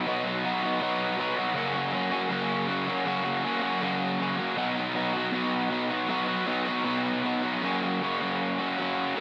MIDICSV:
0, 0, Header, 1, 2, 480
1, 0, Start_track
1, 0, Key_signature, 6, "major"
1, 0, Tempo, 376884
1, 79, Time_signature, 4, 2, 24, 8
1, 7759, Tempo, 381922
1, 11669, End_track
2, 0, Start_track
2, 0, Title_t, "Overdriven electric guitar"
2, 0, Program_c, 0, 29
2, 72, Note_on_c, 0, 47, 92
2, 83, Note_on_c, 0, 54, 107
2, 93, Note_on_c, 0, 59, 98
2, 100, Note_on_c, 0, 63, 112
2, 113, Note_on_c, 0, 66, 115
2, 300, Note_off_c, 0, 66, 0
2, 305, Note_on_c, 0, 66, 72
2, 311, Note_off_c, 0, 63, 0
2, 326, Note_on_c, 0, 63, 72
2, 336, Note_off_c, 0, 59, 0
2, 351, Note_on_c, 0, 59, 66
2, 551, Note_off_c, 0, 59, 0
2, 555, Note_off_c, 0, 47, 0
2, 557, Note_off_c, 0, 54, 0
2, 558, Note_off_c, 0, 63, 0
2, 562, Note_on_c, 0, 54, 73
2, 566, Note_on_c, 0, 59, 76
2, 574, Note_on_c, 0, 63, 81
2, 581, Note_off_c, 0, 66, 0
2, 586, Note_on_c, 0, 66, 84
2, 799, Note_off_c, 0, 66, 0
2, 804, Note_on_c, 0, 66, 78
2, 816, Note_off_c, 0, 63, 0
2, 827, Note_off_c, 0, 59, 0
2, 832, Note_on_c, 0, 63, 76
2, 842, Note_on_c, 0, 59, 69
2, 1026, Note_on_c, 0, 47, 82
2, 1032, Note_off_c, 0, 54, 0
2, 1036, Note_off_c, 0, 63, 0
2, 1037, Note_on_c, 0, 54, 94
2, 1039, Note_off_c, 0, 59, 0
2, 1052, Note_on_c, 0, 63, 102
2, 1054, Note_on_c, 0, 59, 89
2, 1058, Note_off_c, 0, 66, 0
2, 1063, Note_on_c, 0, 66, 103
2, 1483, Note_off_c, 0, 54, 0
2, 1489, Note_on_c, 0, 54, 72
2, 1499, Note_off_c, 0, 59, 0
2, 1513, Note_off_c, 0, 63, 0
2, 1514, Note_on_c, 0, 59, 85
2, 1528, Note_on_c, 0, 63, 75
2, 1537, Note_off_c, 0, 66, 0
2, 1542, Note_on_c, 0, 66, 83
2, 1728, Note_off_c, 0, 66, 0
2, 1733, Note_on_c, 0, 66, 71
2, 1738, Note_off_c, 0, 63, 0
2, 1750, Note_off_c, 0, 47, 0
2, 1753, Note_on_c, 0, 63, 69
2, 1763, Note_off_c, 0, 59, 0
2, 1778, Note_on_c, 0, 59, 52
2, 1959, Note_on_c, 0, 42, 96
2, 1966, Note_on_c, 0, 49, 99
2, 1969, Note_off_c, 0, 54, 0
2, 1974, Note_on_c, 0, 54, 100
2, 1980, Note_off_c, 0, 63, 0
2, 1989, Note_off_c, 0, 59, 0
2, 1989, Note_off_c, 0, 66, 0
2, 1991, Note_on_c, 0, 61, 95
2, 1994, Note_on_c, 0, 58, 108
2, 1994, Note_on_c, 0, 66, 113
2, 2211, Note_off_c, 0, 66, 0
2, 2216, Note_on_c, 0, 66, 70
2, 2230, Note_off_c, 0, 61, 0
2, 2235, Note_on_c, 0, 61, 73
2, 2240, Note_off_c, 0, 58, 0
2, 2245, Note_on_c, 0, 58, 68
2, 2250, Note_off_c, 0, 54, 0
2, 2255, Note_on_c, 0, 54, 69
2, 2447, Note_off_c, 0, 54, 0
2, 2452, Note_on_c, 0, 54, 78
2, 2459, Note_off_c, 0, 49, 0
2, 2464, Note_off_c, 0, 58, 0
2, 2469, Note_on_c, 0, 58, 84
2, 2479, Note_off_c, 0, 61, 0
2, 2484, Note_on_c, 0, 61, 73
2, 2493, Note_off_c, 0, 66, 0
2, 2498, Note_on_c, 0, 66, 77
2, 2683, Note_off_c, 0, 66, 0
2, 2689, Note_on_c, 0, 66, 77
2, 2690, Note_off_c, 0, 61, 0
2, 2695, Note_on_c, 0, 61, 78
2, 2708, Note_off_c, 0, 58, 0
2, 2713, Note_on_c, 0, 58, 65
2, 2722, Note_off_c, 0, 54, 0
2, 2727, Note_on_c, 0, 54, 65
2, 2911, Note_off_c, 0, 42, 0
2, 2916, Note_on_c, 0, 42, 93
2, 2931, Note_off_c, 0, 54, 0
2, 2932, Note_on_c, 0, 49, 93
2, 2936, Note_on_c, 0, 54, 94
2, 2938, Note_off_c, 0, 58, 0
2, 2938, Note_off_c, 0, 61, 0
2, 2953, Note_on_c, 0, 58, 96
2, 2953, Note_on_c, 0, 61, 105
2, 2954, Note_off_c, 0, 66, 0
2, 2959, Note_on_c, 0, 66, 108
2, 3393, Note_off_c, 0, 54, 0
2, 3398, Note_on_c, 0, 54, 69
2, 3408, Note_off_c, 0, 58, 0
2, 3415, Note_off_c, 0, 61, 0
2, 3423, Note_on_c, 0, 58, 72
2, 3430, Note_on_c, 0, 61, 77
2, 3441, Note_off_c, 0, 66, 0
2, 3446, Note_on_c, 0, 66, 79
2, 3646, Note_off_c, 0, 66, 0
2, 3651, Note_on_c, 0, 66, 76
2, 3652, Note_off_c, 0, 61, 0
2, 3654, Note_off_c, 0, 42, 0
2, 3659, Note_off_c, 0, 58, 0
2, 3662, Note_off_c, 0, 49, 0
2, 3667, Note_on_c, 0, 61, 67
2, 3675, Note_on_c, 0, 58, 72
2, 3688, Note_off_c, 0, 54, 0
2, 3693, Note_on_c, 0, 54, 58
2, 3894, Note_on_c, 0, 42, 99
2, 3897, Note_on_c, 0, 49, 105
2, 3898, Note_off_c, 0, 54, 0
2, 3903, Note_off_c, 0, 58, 0
2, 3903, Note_on_c, 0, 54, 109
2, 3916, Note_off_c, 0, 61, 0
2, 3918, Note_on_c, 0, 58, 97
2, 3923, Note_off_c, 0, 66, 0
2, 3928, Note_on_c, 0, 66, 114
2, 3931, Note_on_c, 0, 61, 112
2, 4120, Note_off_c, 0, 66, 0
2, 4125, Note_on_c, 0, 66, 69
2, 4135, Note_off_c, 0, 61, 0
2, 4139, Note_off_c, 0, 58, 0
2, 4151, Note_on_c, 0, 61, 66
2, 4152, Note_off_c, 0, 54, 0
2, 4154, Note_on_c, 0, 58, 70
2, 4158, Note_on_c, 0, 54, 64
2, 4360, Note_off_c, 0, 54, 0
2, 4366, Note_on_c, 0, 54, 76
2, 4371, Note_off_c, 0, 58, 0
2, 4376, Note_off_c, 0, 61, 0
2, 4383, Note_off_c, 0, 42, 0
2, 4384, Note_off_c, 0, 49, 0
2, 4387, Note_on_c, 0, 58, 85
2, 4392, Note_on_c, 0, 61, 78
2, 4399, Note_off_c, 0, 66, 0
2, 4404, Note_on_c, 0, 66, 78
2, 4595, Note_off_c, 0, 66, 0
2, 4598, Note_off_c, 0, 61, 0
2, 4600, Note_on_c, 0, 66, 79
2, 4610, Note_off_c, 0, 58, 0
2, 4613, Note_on_c, 0, 61, 77
2, 4625, Note_on_c, 0, 58, 72
2, 4635, Note_off_c, 0, 54, 0
2, 4640, Note_on_c, 0, 54, 61
2, 4862, Note_on_c, 0, 42, 98
2, 4863, Note_off_c, 0, 54, 0
2, 4865, Note_off_c, 0, 58, 0
2, 4865, Note_on_c, 0, 49, 106
2, 4868, Note_on_c, 0, 54, 111
2, 4872, Note_off_c, 0, 61, 0
2, 4881, Note_on_c, 0, 58, 108
2, 4888, Note_on_c, 0, 61, 107
2, 4896, Note_off_c, 0, 66, 0
2, 4901, Note_on_c, 0, 66, 103
2, 5342, Note_off_c, 0, 54, 0
2, 5347, Note_off_c, 0, 58, 0
2, 5347, Note_on_c, 0, 54, 72
2, 5362, Note_on_c, 0, 58, 74
2, 5366, Note_off_c, 0, 61, 0
2, 5378, Note_off_c, 0, 66, 0
2, 5381, Note_on_c, 0, 61, 78
2, 5383, Note_on_c, 0, 66, 82
2, 5562, Note_off_c, 0, 66, 0
2, 5563, Note_off_c, 0, 61, 0
2, 5567, Note_on_c, 0, 66, 75
2, 5578, Note_on_c, 0, 61, 67
2, 5584, Note_off_c, 0, 58, 0
2, 5588, Note_off_c, 0, 42, 0
2, 5589, Note_off_c, 0, 49, 0
2, 5596, Note_off_c, 0, 54, 0
2, 5599, Note_on_c, 0, 58, 64
2, 5601, Note_on_c, 0, 54, 58
2, 5807, Note_on_c, 0, 47, 103
2, 5811, Note_off_c, 0, 61, 0
2, 5815, Note_off_c, 0, 54, 0
2, 5820, Note_on_c, 0, 54, 93
2, 5822, Note_off_c, 0, 58, 0
2, 5827, Note_on_c, 0, 63, 106
2, 5834, Note_off_c, 0, 66, 0
2, 5837, Note_on_c, 0, 59, 107
2, 5839, Note_on_c, 0, 66, 107
2, 6057, Note_off_c, 0, 66, 0
2, 6062, Note_on_c, 0, 66, 75
2, 6076, Note_off_c, 0, 63, 0
2, 6081, Note_on_c, 0, 63, 81
2, 6102, Note_off_c, 0, 59, 0
2, 6107, Note_on_c, 0, 59, 66
2, 6288, Note_off_c, 0, 54, 0
2, 6294, Note_on_c, 0, 54, 76
2, 6308, Note_off_c, 0, 59, 0
2, 6313, Note_on_c, 0, 59, 76
2, 6322, Note_off_c, 0, 63, 0
2, 6327, Note_on_c, 0, 63, 95
2, 6334, Note_off_c, 0, 66, 0
2, 6339, Note_on_c, 0, 66, 78
2, 6529, Note_off_c, 0, 66, 0
2, 6534, Note_on_c, 0, 66, 88
2, 6556, Note_off_c, 0, 63, 0
2, 6561, Note_on_c, 0, 63, 66
2, 6576, Note_off_c, 0, 59, 0
2, 6581, Note_on_c, 0, 59, 61
2, 6771, Note_off_c, 0, 47, 0
2, 6777, Note_on_c, 0, 47, 94
2, 6784, Note_off_c, 0, 54, 0
2, 6786, Note_off_c, 0, 59, 0
2, 6789, Note_on_c, 0, 54, 100
2, 6794, Note_off_c, 0, 63, 0
2, 6801, Note_on_c, 0, 59, 112
2, 6809, Note_on_c, 0, 63, 103
2, 6816, Note_off_c, 0, 66, 0
2, 6821, Note_on_c, 0, 66, 103
2, 7250, Note_off_c, 0, 54, 0
2, 7255, Note_on_c, 0, 54, 74
2, 7257, Note_off_c, 0, 59, 0
2, 7271, Note_off_c, 0, 63, 0
2, 7272, Note_on_c, 0, 59, 72
2, 7287, Note_on_c, 0, 63, 82
2, 7294, Note_off_c, 0, 66, 0
2, 7299, Note_on_c, 0, 66, 81
2, 7508, Note_off_c, 0, 47, 0
2, 7517, Note_off_c, 0, 63, 0
2, 7517, Note_off_c, 0, 66, 0
2, 7522, Note_on_c, 0, 66, 73
2, 7532, Note_on_c, 0, 63, 66
2, 7537, Note_off_c, 0, 59, 0
2, 7552, Note_on_c, 0, 59, 59
2, 7745, Note_off_c, 0, 54, 0
2, 7748, Note_on_c, 0, 47, 93
2, 7750, Note_on_c, 0, 54, 97
2, 7752, Note_off_c, 0, 59, 0
2, 7762, Note_off_c, 0, 63, 0
2, 7762, Note_off_c, 0, 66, 0
2, 7767, Note_on_c, 0, 59, 113
2, 7777, Note_on_c, 0, 63, 110
2, 7777, Note_on_c, 0, 66, 113
2, 7973, Note_off_c, 0, 66, 0
2, 7977, Note_off_c, 0, 63, 0
2, 7988, Note_on_c, 0, 66, 89
2, 7992, Note_on_c, 0, 63, 70
2, 8000, Note_off_c, 0, 59, 0
2, 8015, Note_on_c, 0, 59, 64
2, 8206, Note_off_c, 0, 54, 0
2, 8221, Note_off_c, 0, 59, 0
2, 8221, Note_on_c, 0, 54, 82
2, 8223, Note_off_c, 0, 63, 0
2, 8230, Note_off_c, 0, 47, 0
2, 8236, Note_on_c, 0, 59, 73
2, 8238, Note_on_c, 0, 63, 83
2, 8246, Note_off_c, 0, 66, 0
2, 8261, Note_on_c, 0, 66, 89
2, 8455, Note_off_c, 0, 66, 0
2, 8470, Note_on_c, 0, 66, 75
2, 8475, Note_off_c, 0, 63, 0
2, 8490, Note_on_c, 0, 63, 74
2, 8495, Note_off_c, 0, 59, 0
2, 8510, Note_on_c, 0, 59, 69
2, 8698, Note_off_c, 0, 59, 0
2, 8701, Note_off_c, 0, 54, 0
2, 8708, Note_on_c, 0, 47, 104
2, 8714, Note_off_c, 0, 63, 0
2, 8714, Note_on_c, 0, 59, 102
2, 8716, Note_on_c, 0, 54, 107
2, 8724, Note_off_c, 0, 66, 0
2, 8729, Note_on_c, 0, 63, 109
2, 8739, Note_on_c, 0, 66, 107
2, 9181, Note_off_c, 0, 54, 0
2, 9191, Note_off_c, 0, 59, 0
2, 9196, Note_on_c, 0, 54, 72
2, 9206, Note_on_c, 0, 59, 74
2, 9209, Note_off_c, 0, 63, 0
2, 9218, Note_off_c, 0, 66, 0
2, 9224, Note_on_c, 0, 63, 71
2, 9233, Note_on_c, 0, 66, 74
2, 9422, Note_off_c, 0, 66, 0
2, 9428, Note_off_c, 0, 47, 0
2, 9437, Note_on_c, 0, 66, 75
2, 9440, Note_off_c, 0, 63, 0
2, 9455, Note_on_c, 0, 63, 65
2, 9459, Note_off_c, 0, 59, 0
2, 9474, Note_on_c, 0, 59, 66
2, 9659, Note_off_c, 0, 54, 0
2, 9659, Note_off_c, 0, 66, 0
2, 9668, Note_off_c, 0, 63, 0
2, 9678, Note_off_c, 0, 59, 0
2, 9683, Note_on_c, 0, 42, 78
2, 9686, Note_on_c, 0, 49, 86
2, 9688, Note_on_c, 0, 54, 97
2, 9707, Note_on_c, 0, 58, 92
2, 9711, Note_on_c, 0, 66, 91
2, 9719, Note_on_c, 0, 61, 98
2, 9926, Note_off_c, 0, 66, 0
2, 9931, Note_on_c, 0, 66, 66
2, 9934, Note_off_c, 0, 61, 0
2, 9939, Note_on_c, 0, 61, 63
2, 9948, Note_off_c, 0, 58, 0
2, 9953, Note_on_c, 0, 58, 66
2, 9955, Note_off_c, 0, 54, 0
2, 9960, Note_on_c, 0, 54, 54
2, 10159, Note_off_c, 0, 49, 0
2, 10174, Note_off_c, 0, 42, 0
2, 10179, Note_on_c, 0, 42, 83
2, 10179, Note_on_c, 0, 49, 81
2, 10197, Note_off_c, 0, 54, 0
2, 10198, Note_off_c, 0, 61, 0
2, 10200, Note_off_c, 0, 58, 0
2, 10202, Note_on_c, 0, 54, 81
2, 10203, Note_on_c, 0, 61, 94
2, 10206, Note_on_c, 0, 58, 80
2, 10210, Note_off_c, 0, 66, 0
2, 10215, Note_on_c, 0, 66, 85
2, 10399, Note_off_c, 0, 66, 0
2, 10404, Note_on_c, 0, 66, 66
2, 10413, Note_off_c, 0, 61, 0
2, 10418, Note_on_c, 0, 61, 67
2, 10430, Note_off_c, 0, 58, 0
2, 10435, Note_on_c, 0, 58, 60
2, 10439, Note_off_c, 0, 54, 0
2, 10444, Note_on_c, 0, 54, 58
2, 10646, Note_off_c, 0, 49, 0
2, 10889, Note_off_c, 0, 66, 0
2, 10894, Note_on_c, 0, 66, 67
2, 10895, Note_off_c, 0, 61, 0
2, 10902, Note_off_c, 0, 58, 0
2, 10910, Note_on_c, 0, 61, 67
2, 10917, Note_on_c, 0, 58, 58
2, 10920, Note_off_c, 0, 54, 0
2, 10925, Note_on_c, 0, 54, 59
2, 11140, Note_off_c, 0, 54, 0
2, 11145, Note_on_c, 0, 54, 68
2, 11151, Note_off_c, 0, 58, 0
2, 11162, Note_off_c, 0, 61, 0
2, 11166, Note_on_c, 0, 58, 59
2, 11177, Note_on_c, 0, 61, 66
2, 11182, Note_off_c, 0, 66, 0
2, 11187, Note_on_c, 0, 66, 73
2, 11608, Note_off_c, 0, 42, 0
2, 11613, Note_on_c, 0, 42, 101
2, 11616, Note_off_c, 0, 58, 0
2, 11627, Note_on_c, 0, 49, 88
2, 11629, Note_off_c, 0, 54, 0
2, 11636, Note_off_c, 0, 61, 0
2, 11645, Note_off_c, 0, 66, 0
2, 11669, Note_off_c, 0, 42, 0
2, 11669, Note_off_c, 0, 49, 0
2, 11669, End_track
0, 0, End_of_file